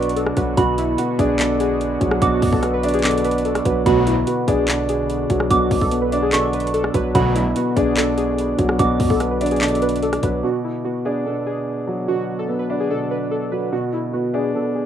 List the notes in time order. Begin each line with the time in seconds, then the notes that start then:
Already playing: B1 B2 D3 F#3 B3 D4 F#4 B4 C#6
0.03 closed hi-hat
0.09 closed hi-hat
0.16 A4, closed hi-hat
0.27 cross-stick
0.37 B1 F#3 B4, kick, closed hi-hat
0.57 B1 B2 F#4 B5, kick, closed hi-hat
0.78 E4, closed hi-hat
0.98 B3 F#4, closed hi-hat
1.19 B1 D4 G#4, kick, closed hi-hat
1.39 B2 A4, clap, closed hi-hat
1.60 G#4, closed hi-hat
1.81 closed hi-hat
2.01 B1 F#3, kick, closed hi-hat
2.11 cross-stick
2.22 B1 B2 F#4 D6, kick, closed hi-hat
2.42 F#2, kick, open hi-hat
2.53 B1 A4, kick
2.63 B3, cross-stick, closed hi-hat
2.73 B4
2.83 D4, closed hi-hat
2.89 closed hi-hat
2.94 G#4, closed hi-hat
2.99 closed hi-hat
3.04 B2 A4 D6, clap, closed hi-hat
3.11 closed hi-hat
3.18 closed hi-hat
3.24 B4, closed hi-hat
3.31 closed hi-hat
3.38 closed hi-hat
3.45 A4, closed hi-hat
3.55 cross-stick, closed hi-hat
3.65 B1 F#3 B4, kick, closed hi-hat
3.86 B1 D2 B2 D3 F#3 F#4 B5, kick, closed hi-hat
4.07 E4, closed hi-hat
4.27 B3 F#4, closed hi-hat
4.48 B1 D4 G#4, kick, closed hi-hat
4.68 B2 A4, clap, closed hi-hat
4.89 G#4, closed hi-hat
5.10 closed hi-hat
5.30 B1 F#3, kick, closed hi-hat
5.40 cross-stick
5.50 B1 B2 F#4 D6, kick, closed hi-hat
5.71 B1, kick, open hi-hat
5.81 B1 A4, kick
5.91 B3, closed hi-hat
6.02 B4
6.12 D4, closed hi-hat
6.22 G#4
6.33 B2 A4 C#6, clap, closed hi-hat
6.53 B4, closed hi-hat
6.60 closed hi-hat
6.67 closed hi-hat
6.74 A4, closed hi-hat
6.84 cross-stick
6.94 B1 F#3 B4, kick, closed hi-hat
7.15 B1 D2 B2 F#3 B3 F#4 B5, kick, closed hi-hat
7.36 E4, closed hi-hat
7.56 B3 F#4, closed hi-hat
7.76 B1 D4 G#4, kick, closed hi-hat
7.97 B2 A4, clap, closed hi-hat
8.17 G#4, closed hi-hat
8.38 closed hi-hat
8.58 B1 F#3, kick, closed hi-hat
8.69 cross-stick
8.79 B1 B2 F#4 D6, kick, closed hi-hat
9.00 F#2, kick, open hi-hat
9.10 B1 A4, kick
9.20 B3, cross-stick, closed hi-hat
9.31 B4
9.41 D4, closed hi-hat
9.46 closed hi-hat
9.51 G#4, closed hi-hat
9.56 closed hi-hat
9.61 B2 A4 D6, clap, closed hi-hat
9.68 closed hi-hat
9.75 closed hi-hat
9.82 B4, closed hi-hat
9.89 closed hi-hat
9.96 closed hi-hat
10.03 A4, closed hi-hat
10.13 cross-stick, closed hi-hat
10.23 B1 F#3 B4, kick, closed hi-hat
10.43 B2 D3 B3 F#4
10.64 E4
10.85 B3 F#4
11.05 D4 G#4
11.26 B2 A4
11.46 G#4
11.87 F#3
12.08 B2 F#4
12.39 A4
12.48 B3
12.59 B4
12.70 D4
12.80 G#4
12.90 B2 A4
13.11 B4
13.31 A4
13.52 F#3 B4
13.72 B2 F#4
13.93 E4
14.13 B3 F#4
14.34 D4 G#4
14.55 B2 A4
14.75 G#4